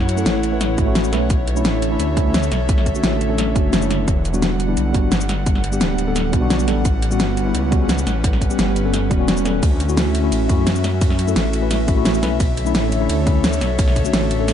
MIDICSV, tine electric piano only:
0, 0, Header, 1, 2, 480
1, 0, Start_track
1, 0, Tempo, 346821
1, 1802, Time_signature, 4, 2, 24, 8
1, 20111, End_track
2, 0, Start_track
2, 0, Title_t, "Tine electric piano"
2, 0, Program_c, 0, 4
2, 229, Note_on_c, 0, 57, 88
2, 234, Note_on_c, 0, 61, 79
2, 244, Note_on_c, 0, 64, 80
2, 252, Note_on_c, 0, 69, 97
2, 687, Note_off_c, 0, 57, 0
2, 690, Note_off_c, 0, 61, 0
2, 695, Note_off_c, 0, 64, 0
2, 699, Note_off_c, 0, 69, 0
2, 711, Note_on_c, 0, 57, 85
2, 717, Note_on_c, 0, 61, 77
2, 726, Note_on_c, 0, 64, 77
2, 732, Note_on_c, 0, 71, 93
2, 1051, Note_off_c, 0, 57, 0
2, 1055, Note_off_c, 0, 61, 0
2, 1059, Note_off_c, 0, 64, 0
2, 1062, Note_off_c, 0, 71, 0
2, 1068, Note_on_c, 0, 57, 87
2, 1076, Note_on_c, 0, 61, 84
2, 1083, Note_on_c, 0, 64, 78
2, 1092, Note_on_c, 0, 66, 98
2, 1168, Note_off_c, 0, 57, 0
2, 1172, Note_off_c, 0, 61, 0
2, 1176, Note_off_c, 0, 64, 0
2, 1180, Note_off_c, 0, 66, 0
2, 1187, Note_on_c, 0, 57, 93
2, 1195, Note_on_c, 0, 61, 82
2, 1203, Note_on_c, 0, 64, 83
2, 1210, Note_on_c, 0, 66, 99
2, 1525, Note_off_c, 0, 57, 0
2, 1529, Note_off_c, 0, 61, 0
2, 1533, Note_off_c, 0, 64, 0
2, 1536, Note_off_c, 0, 66, 0
2, 1549, Note_on_c, 0, 57, 89
2, 1556, Note_on_c, 0, 61, 84
2, 1564, Note_on_c, 0, 64, 81
2, 1572, Note_on_c, 0, 71, 98
2, 1778, Note_off_c, 0, 57, 0
2, 1781, Note_off_c, 0, 61, 0
2, 1785, Note_off_c, 0, 64, 0
2, 1789, Note_off_c, 0, 71, 0
2, 2147, Note_on_c, 0, 57, 99
2, 2155, Note_on_c, 0, 61, 89
2, 2164, Note_on_c, 0, 62, 89
2, 2170, Note_on_c, 0, 64, 107
2, 2606, Note_off_c, 0, 57, 0
2, 2610, Note_off_c, 0, 61, 0
2, 2615, Note_off_c, 0, 62, 0
2, 2618, Note_off_c, 0, 64, 0
2, 2630, Note_on_c, 0, 57, 88
2, 2638, Note_on_c, 0, 61, 82
2, 2645, Note_on_c, 0, 62, 80
2, 2652, Note_on_c, 0, 64, 97
2, 2966, Note_off_c, 0, 57, 0
2, 2970, Note_off_c, 0, 61, 0
2, 2974, Note_off_c, 0, 62, 0
2, 2978, Note_off_c, 0, 64, 0
2, 2987, Note_on_c, 0, 57, 96
2, 2995, Note_on_c, 0, 61, 86
2, 3002, Note_on_c, 0, 62, 89
2, 3010, Note_on_c, 0, 64, 105
2, 3217, Note_off_c, 0, 57, 0
2, 3221, Note_off_c, 0, 61, 0
2, 3224, Note_off_c, 0, 62, 0
2, 3229, Note_off_c, 0, 64, 0
2, 4072, Note_on_c, 0, 57, 89
2, 4080, Note_on_c, 0, 61, 83
2, 4086, Note_on_c, 0, 62, 82
2, 4096, Note_on_c, 0, 66, 99
2, 4529, Note_off_c, 0, 57, 0
2, 4533, Note_off_c, 0, 61, 0
2, 4536, Note_off_c, 0, 62, 0
2, 4540, Note_off_c, 0, 66, 0
2, 4547, Note_on_c, 0, 57, 80
2, 4556, Note_on_c, 0, 61, 75
2, 4564, Note_on_c, 0, 62, 77
2, 4571, Note_on_c, 0, 69, 94
2, 4890, Note_off_c, 0, 57, 0
2, 4894, Note_off_c, 0, 61, 0
2, 4898, Note_off_c, 0, 62, 0
2, 4902, Note_off_c, 0, 69, 0
2, 4906, Note_on_c, 0, 57, 80
2, 4916, Note_on_c, 0, 61, 70
2, 4924, Note_on_c, 0, 62, 74
2, 4929, Note_on_c, 0, 66, 87
2, 5247, Note_off_c, 0, 57, 0
2, 5252, Note_off_c, 0, 61, 0
2, 5256, Note_off_c, 0, 62, 0
2, 5259, Note_off_c, 0, 66, 0
2, 5267, Note_on_c, 0, 57, 78
2, 5276, Note_on_c, 0, 61, 71
2, 5284, Note_on_c, 0, 62, 73
2, 5290, Note_on_c, 0, 64, 85
2, 5619, Note_off_c, 0, 57, 0
2, 5623, Note_off_c, 0, 61, 0
2, 5627, Note_off_c, 0, 62, 0
2, 5631, Note_off_c, 0, 64, 0
2, 5987, Note_on_c, 0, 55, 96
2, 5993, Note_on_c, 0, 59, 90
2, 6001, Note_on_c, 0, 62, 88
2, 6010, Note_on_c, 0, 66, 105
2, 6446, Note_off_c, 0, 55, 0
2, 6449, Note_off_c, 0, 59, 0
2, 6453, Note_off_c, 0, 62, 0
2, 6458, Note_off_c, 0, 66, 0
2, 6467, Note_on_c, 0, 55, 89
2, 6474, Note_on_c, 0, 59, 81
2, 6482, Note_on_c, 0, 62, 81
2, 6491, Note_on_c, 0, 64, 96
2, 6805, Note_off_c, 0, 55, 0
2, 6808, Note_off_c, 0, 59, 0
2, 6812, Note_off_c, 0, 62, 0
2, 6817, Note_off_c, 0, 64, 0
2, 6824, Note_on_c, 0, 55, 95
2, 6832, Note_on_c, 0, 59, 85
2, 6840, Note_on_c, 0, 62, 86
2, 6847, Note_on_c, 0, 66, 105
2, 7055, Note_off_c, 0, 55, 0
2, 7059, Note_off_c, 0, 59, 0
2, 7063, Note_off_c, 0, 62, 0
2, 7067, Note_off_c, 0, 66, 0
2, 7908, Note_on_c, 0, 55, 86
2, 7915, Note_on_c, 0, 59, 82
2, 7924, Note_on_c, 0, 62, 82
2, 7932, Note_on_c, 0, 67, 97
2, 8367, Note_off_c, 0, 55, 0
2, 8370, Note_off_c, 0, 59, 0
2, 8375, Note_off_c, 0, 62, 0
2, 8379, Note_off_c, 0, 67, 0
2, 8388, Note_on_c, 0, 55, 82
2, 8395, Note_on_c, 0, 59, 75
2, 8404, Note_on_c, 0, 62, 76
2, 8411, Note_on_c, 0, 69, 91
2, 8725, Note_off_c, 0, 55, 0
2, 8734, Note_off_c, 0, 59, 0
2, 8738, Note_off_c, 0, 62, 0
2, 8741, Note_off_c, 0, 69, 0
2, 8742, Note_on_c, 0, 55, 89
2, 8751, Note_on_c, 0, 59, 82
2, 8758, Note_on_c, 0, 62, 81
2, 8766, Note_on_c, 0, 66, 96
2, 8845, Note_off_c, 0, 55, 0
2, 8850, Note_off_c, 0, 59, 0
2, 8853, Note_off_c, 0, 62, 0
2, 8857, Note_off_c, 0, 66, 0
2, 8866, Note_on_c, 0, 55, 94
2, 8873, Note_on_c, 0, 59, 84
2, 8881, Note_on_c, 0, 62, 83
2, 8887, Note_on_c, 0, 66, 100
2, 9204, Note_off_c, 0, 55, 0
2, 9208, Note_off_c, 0, 59, 0
2, 9212, Note_off_c, 0, 62, 0
2, 9215, Note_off_c, 0, 66, 0
2, 9227, Note_on_c, 0, 55, 91
2, 9235, Note_on_c, 0, 59, 84
2, 9243, Note_on_c, 0, 62, 84
2, 9251, Note_on_c, 0, 69, 99
2, 9457, Note_off_c, 0, 55, 0
2, 9461, Note_off_c, 0, 59, 0
2, 9465, Note_off_c, 0, 62, 0
2, 9468, Note_off_c, 0, 69, 0
2, 9833, Note_on_c, 0, 55, 100
2, 9841, Note_on_c, 0, 59, 90
2, 9846, Note_on_c, 0, 61, 90
2, 9854, Note_on_c, 0, 66, 108
2, 10289, Note_off_c, 0, 55, 0
2, 10293, Note_off_c, 0, 59, 0
2, 10296, Note_off_c, 0, 61, 0
2, 10300, Note_off_c, 0, 66, 0
2, 10311, Note_on_c, 0, 55, 86
2, 10318, Note_on_c, 0, 59, 82
2, 10324, Note_on_c, 0, 61, 82
2, 10332, Note_on_c, 0, 64, 102
2, 10647, Note_off_c, 0, 55, 0
2, 10650, Note_off_c, 0, 59, 0
2, 10653, Note_off_c, 0, 61, 0
2, 10657, Note_off_c, 0, 64, 0
2, 10667, Note_on_c, 0, 55, 95
2, 10673, Note_on_c, 0, 59, 85
2, 10683, Note_on_c, 0, 61, 86
2, 10690, Note_on_c, 0, 66, 103
2, 10897, Note_off_c, 0, 55, 0
2, 10900, Note_off_c, 0, 59, 0
2, 10905, Note_off_c, 0, 61, 0
2, 10908, Note_off_c, 0, 66, 0
2, 11752, Note_on_c, 0, 55, 88
2, 11760, Note_on_c, 0, 59, 80
2, 11768, Note_on_c, 0, 61, 81
2, 11776, Note_on_c, 0, 67, 99
2, 12209, Note_off_c, 0, 55, 0
2, 12213, Note_off_c, 0, 59, 0
2, 12217, Note_off_c, 0, 61, 0
2, 12221, Note_off_c, 0, 67, 0
2, 12234, Note_on_c, 0, 55, 80
2, 12241, Note_on_c, 0, 59, 77
2, 12249, Note_on_c, 0, 61, 77
2, 12256, Note_on_c, 0, 69, 91
2, 12573, Note_off_c, 0, 55, 0
2, 12577, Note_off_c, 0, 59, 0
2, 12580, Note_off_c, 0, 61, 0
2, 12584, Note_off_c, 0, 69, 0
2, 12594, Note_on_c, 0, 55, 86
2, 12600, Note_on_c, 0, 59, 78
2, 12608, Note_on_c, 0, 61, 82
2, 12616, Note_on_c, 0, 66, 95
2, 12691, Note_off_c, 0, 55, 0
2, 12694, Note_off_c, 0, 59, 0
2, 12698, Note_off_c, 0, 61, 0
2, 12702, Note_off_c, 0, 66, 0
2, 12713, Note_on_c, 0, 55, 90
2, 12722, Note_on_c, 0, 59, 83
2, 12728, Note_on_c, 0, 61, 80
2, 12735, Note_on_c, 0, 66, 102
2, 13048, Note_off_c, 0, 55, 0
2, 13052, Note_off_c, 0, 59, 0
2, 13056, Note_off_c, 0, 61, 0
2, 13059, Note_off_c, 0, 66, 0
2, 13069, Note_on_c, 0, 55, 88
2, 13080, Note_on_c, 0, 59, 82
2, 13085, Note_on_c, 0, 61, 81
2, 13094, Note_on_c, 0, 69, 99
2, 13298, Note_off_c, 0, 55, 0
2, 13303, Note_off_c, 0, 59, 0
2, 13306, Note_off_c, 0, 61, 0
2, 13310, Note_off_c, 0, 69, 0
2, 13673, Note_on_c, 0, 57, 95
2, 13681, Note_on_c, 0, 61, 91
2, 13690, Note_on_c, 0, 64, 89
2, 13697, Note_on_c, 0, 66, 108
2, 14129, Note_off_c, 0, 57, 0
2, 14134, Note_off_c, 0, 61, 0
2, 14138, Note_off_c, 0, 64, 0
2, 14141, Note_off_c, 0, 66, 0
2, 14150, Note_on_c, 0, 57, 88
2, 14157, Note_on_c, 0, 61, 80
2, 14165, Note_on_c, 0, 64, 83
2, 14172, Note_on_c, 0, 66, 96
2, 14486, Note_off_c, 0, 57, 0
2, 14490, Note_off_c, 0, 61, 0
2, 14494, Note_off_c, 0, 64, 0
2, 14497, Note_off_c, 0, 66, 0
2, 14508, Note_on_c, 0, 57, 91
2, 14516, Note_on_c, 0, 61, 90
2, 14523, Note_on_c, 0, 64, 85
2, 14532, Note_on_c, 0, 66, 105
2, 14737, Note_off_c, 0, 57, 0
2, 14741, Note_off_c, 0, 61, 0
2, 14745, Note_off_c, 0, 64, 0
2, 14749, Note_off_c, 0, 66, 0
2, 15589, Note_on_c, 0, 57, 86
2, 15597, Note_on_c, 0, 61, 82
2, 15603, Note_on_c, 0, 64, 82
2, 15612, Note_on_c, 0, 69, 98
2, 16047, Note_off_c, 0, 57, 0
2, 16051, Note_off_c, 0, 61, 0
2, 16054, Note_off_c, 0, 64, 0
2, 16059, Note_off_c, 0, 69, 0
2, 16067, Note_on_c, 0, 57, 83
2, 16077, Note_on_c, 0, 61, 75
2, 16084, Note_on_c, 0, 64, 79
2, 16092, Note_on_c, 0, 71, 90
2, 16410, Note_off_c, 0, 57, 0
2, 16414, Note_off_c, 0, 61, 0
2, 16418, Note_off_c, 0, 64, 0
2, 16422, Note_off_c, 0, 71, 0
2, 16425, Note_on_c, 0, 57, 89
2, 16434, Note_on_c, 0, 61, 81
2, 16441, Note_on_c, 0, 64, 82
2, 16449, Note_on_c, 0, 66, 98
2, 16527, Note_off_c, 0, 57, 0
2, 16531, Note_off_c, 0, 61, 0
2, 16535, Note_off_c, 0, 64, 0
2, 16539, Note_off_c, 0, 66, 0
2, 16551, Note_on_c, 0, 57, 91
2, 16559, Note_on_c, 0, 61, 81
2, 16568, Note_on_c, 0, 64, 87
2, 16574, Note_on_c, 0, 66, 102
2, 16887, Note_off_c, 0, 57, 0
2, 16891, Note_off_c, 0, 61, 0
2, 16895, Note_off_c, 0, 64, 0
2, 16898, Note_off_c, 0, 66, 0
2, 16906, Note_on_c, 0, 57, 91
2, 16912, Note_on_c, 0, 61, 80
2, 16923, Note_on_c, 0, 64, 84
2, 16929, Note_on_c, 0, 71, 97
2, 17136, Note_off_c, 0, 57, 0
2, 17139, Note_off_c, 0, 61, 0
2, 17145, Note_off_c, 0, 64, 0
2, 17148, Note_off_c, 0, 71, 0
2, 17510, Note_on_c, 0, 57, 97
2, 17519, Note_on_c, 0, 61, 91
2, 17528, Note_on_c, 0, 62, 88
2, 17533, Note_on_c, 0, 64, 112
2, 17968, Note_off_c, 0, 57, 0
2, 17972, Note_off_c, 0, 61, 0
2, 17977, Note_off_c, 0, 62, 0
2, 17979, Note_off_c, 0, 64, 0
2, 17992, Note_on_c, 0, 57, 92
2, 17997, Note_on_c, 0, 61, 83
2, 18004, Note_on_c, 0, 62, 84
2, 18014, Note_on_c, 0, 64, 99
2, 18327, Note_off_c, 0, 57, 0
2, 18330, Note_off_c, 0, 61, 0
2, 18334, Note_off_c, 0, 62, 0
2, 18338, Note_off_c, 0, 64, 0
2, 18348, Note_on_c, 0, 57, 92
2, 18355, Note_on_c, 0, 61, 88
2, 18364, Note_on_c, 0, 62, 86
2, 18370, Note_on_c, 0, 64, 106
2, 18577, Note_off_c, 0, 57, 0
2, 18581, Note_off_c, 0, 61, 0
2, 18585, Note_off_c, 0, 62, 0
2, 18588, Note_off_c, 0, 64, 0
2, 19430, Note_on_c, 0, 57, 87
2, 19439, Note_on_c, 0, 61, 82
2, 19446, Note_on_c, 0, 62, 84
2, 19455, Note_on_c, 0, 66, 101
2, 19888, Note_off_c, 0, 57, 0
2, 19892, Note_off_c, 0, 61, 0
2, 19896, Note_off_c, 0, 62, 0
2, 19900, Note_off_c, 0, 66, 0
2, 19914, Note_on_c, 0, 57, 81
2, 19921, Note_on_c, 0, 61, 76
2, 19929, Note_on_c, 0, 62, 79
2, 19936, Note_on_c, 0, 69, 88
2, 20111, Note_off_c, 0, 57, 0
2, 20111, Note_off_c, 0, 61, 0
2, 20111, Note_off_c, 0, 62, 0
2, 20111, Note_off_c, 0, 69, 0
2, 20111, End_track
0, 0, End_of_file